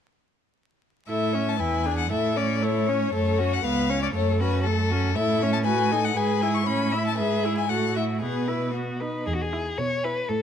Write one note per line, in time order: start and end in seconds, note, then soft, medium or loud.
1.08 1.61 A2 soft
1.08 1.36 E4 soft
1.08 1.34 A4 soft
1.08 1.50 E5 soft
1.33 1.59 C#4 soft
1.33 1.59 C#5 soft
1.49 1.61 A5 soft
1.59 2.13 E2 soft
1.59 1.87 E4 soft
1.59 1.87 B4 soft
1.59 1.97 G#5 soft
1.86 2.10 D4 soft
1.86 2.10 G#4 soft
1.98 2.11 F#5 soft
2.11 3.12 A2 soft
2.11 2.38 E4 soft
2.11 2.38 A4 soft
2.11 2.38 E5 soft
2.36 2.64 C#4 soft
2.36 2.63 C#5 soft
2.36 2.66 D5 soft
2.62 2.90 E4 soft
2.62 2.88 A4 soft
2.62 3.14 C#5 soft
2.87 3.13 C#4 soft
2.87 3.13 C#5 soft
3.13 3.63 F#2 soft
3.13 3.41 A3 soft
3.13 3.40 A4 soft
3.13 3.54 C#5 soft
3.38 3.64 C#4 soft
3.38 3.64 F#4 soft
3.53 3.65 F#5 soft
3.64 4.14 C#2 soft
3.64 3.90 B3 soft
3.64 3.91 B4 soft
3.64 4.02 F5 soft
3.89 4.14 C#4 soft
3.89 4.14 C#5 soft
4.02 4.07 D5 soft
4.14 5.18 F#2 soft
4.14 4.42 A3 soft
4.14 4.41 A4 soft
4.14 4.39 C#5 soft
4.40 4.68 C#4 soft
4.40 4.67 F#4 soft
4.40 4.63 B4 soft
4.64 4.93 A3 soft
4.64 5.17 A4 soft
4.64 4.92 A4 soft
4.90 5.16 C#4 soft
4.90 5.15 F#4 soft
5.15 6.16 A2 soft
5.15 5.44 E4 soft
5.15 5.44 A4 soft
5.15 5.52 E5 medium
5.42 5.66 C#4 soft
5.42 5.65 C#5 soft
5.53 5.58 A5 soft
5.65 5.93 F#4 soft
5.65 5.93 B4 soft
5.65 6.06 G#5 medium
5.91 6.16 D#4 soft
5.91 6.16 A4 soft
6.04 6.18 F#5 soft
6.16 6.69 G#2 soft
6.16 6.44 G#4 soft
6.16 6.43 B4 soft
6.16 6.56 G#5 medium
6.42 6.68 E4 soft
6.42 6.66 G#4 soft
6.54 6.68 C#6 soft
6.66 7.20 A2 soft
6.66 6.95 C#4 soft
6.66 6.94 C#5 soft
6.66 7.05 B5 soft
6.92 7.19 E4 soft
6.92 7.17 E5 soft
7.07 7.17 A5 soft
7.17 7.71 G#2 soft
7.17 7.46 G#4 soft
7.17 7.45 B4 soft
7.17 7.56 E5 soft
7.43 7.70 E4 soft
7.43 7.69 G#4 soft
7.58 7.71 G#5 soft
7.69 8.23 A2 soft
7.69 7.98 F#4 soft
7.69 7.97 A4 soft
7.69 7.96 F#5 soft
7.95 8.22 E4 soft
7.95 8.21 F#4 soft
7.95 8.04 E5 soft
8.22 9.07 B2 soft
8.22 8.49 B3 soft
8.22 8.49 G#4 soft
8.22 8.74 B4 soft
8.48 8.74 E4 soft
8.48 8.73 B4 soft
8.73 9.03 B3 soft
8.73 9.01 F#4 soft
9.00 9.27 D#4 soft
9.00 9.26 B4 soft
9.27 9.67 E2 soft
9.27 9.35 G#4 soft
9.35 9.43 F#4 soft
9.41 9.79 G#4 soft
9.52 9.72 E4 soft
9.52 9.72 G#5 soft
9.78 10.19 B2 soft
9.78 10.06 C#5 soft
10.03 10.23 E4 soft
10.03 10.30 B4 soft
10.03 10.23 G#5 soft
10.29 10.42 A2 soft
10.29 10.42 A4 soft